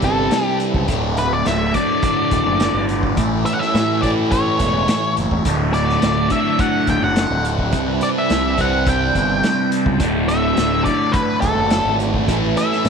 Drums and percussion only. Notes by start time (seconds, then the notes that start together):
0.02 kick, closed hi-hat
0.31 snare, closed hi-hat
0.60 closed hi-hat
0.74 kick
0.88 kick, closed hi-hat
1.17 closed hi-hat
1.46 snare, closed hi-hat
1.74 kick, closed hi-hat
2.02 kick, closed hi-hat
2.31 kick, closed hi-hat
2.60 snare, closed hi-hat
2.89 closed hi-hat
3.03 kick
3.17 kick, closed hi-hat
3.46 closed hi-hat
3.61 snare
3.75 snare, closed hi-hat
4.03 kick, closed hi-hat
4.32 kick, closed hi-hat
4.59 kick, closed hi-hat
4.88 snare, closed hi-hat
5.17 closed hi-hat
5.31 kick
5.45 kick, closed hi-hat
5.74 closed hi-hat
5.89 snare
6.02 snare, closed hi-hat
6.30 kick, closed hi-hat
6.59 kick, closed hi-hat
6.87 kick, closed hi-hat
7.16 snare, closed hi-hat
7.45 closed hi-hat
7.59 kick
7.72 kick, closed hi-hat
8.01 closed hi-hat
8.30 snare, closed hi-hat
8.58 kick, closed hi-hat
8.86 kick, closed hi-hat
9.15 kick, closed hi-hat
9.43 snare, closed hi-hat
9.72 closed hi-hat
9.86 kick
10.00 kick, closed hi-hat
10.29 closed hi-hat
10.57 snare, closed hi-hat
10.86 kick, closed hi-hat
11.14 kick, closed hi-hat
11.42 kick, closed hi-hat
11.70 snare, closed hi-hat
12.00 closed hi-hat
12.14 kick
12.28 kick, closed hi-hat
12.57 closed hi-hat
12.72 snare
12.85 snare, closed hi-hat